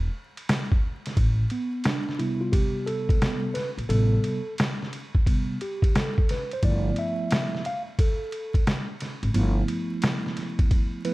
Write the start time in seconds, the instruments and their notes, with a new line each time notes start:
0.37 ride
0.49 snare, hi-hat pedal, ride
0.72 kick
1.06 snare, ride
1.17 upright bass A1, kick, ride
1.50 tine electric piano B3, ride
1.84 tine electric piano D4, snare, hi-hat pedal, ride
2.09 snare
2.19 tine electric piano C3 G3 B3 E4, ride
2.41 tine electric piano F4
2.52 tine electric piano G4, kick, ride
2.86 tine electric piano A4, ride
3.09 kick, ride
3.22 tine electric piano C3 G3 B3, snare, hi-hat pedal, ride
3.54 tine electric piano B4, snare, ride
3.78 upright bass A#1, ride
3.89 upright bass A1, tine electric piano C3 G3 B3 A4, ride
4.24 ride
4.58 snare, hi-hat pedal, ride
4.82 snare
4.93 ride
5.15 kick
5.26 tine electric piano C3 G3 B3, kick, ride
5.61 tine electric piano G4, ride
5.82 kick, ride
5.95 tine electric piano A4, snare, hi-hat pedal, ride
6.18 kick
6.29 tine electric piano B4, snare, ride
6.51 tine electric piano C5, ride
6.63 upright bass G1, tine electric piano F3 A3 B3 E4 D5, kick, ride
6.96 tine electric piano E5, ride
7.31 snare, hi-hat pedal, ride
7.55 snare
7.65 tine electric piano F5, ride
7.99 tine electric piano A4, kick, ride
8.32 ride
8.54 kick, ride
8.67 snare, hi-hat pedal, ride
9.00 snare, ride
9.23 upright bass G#1, ride
9.34 upright bass G1, tine electric piano F3 A3 B3 E4, ride
9.68 ride
10.02 snare, hi-hat pedal, ride
10.26 snare
10.37 snare, ride
10.59 kick, ride
10.71 kick, ride
11.05 tine electric piano F3 A3 B3 E4 B4, ride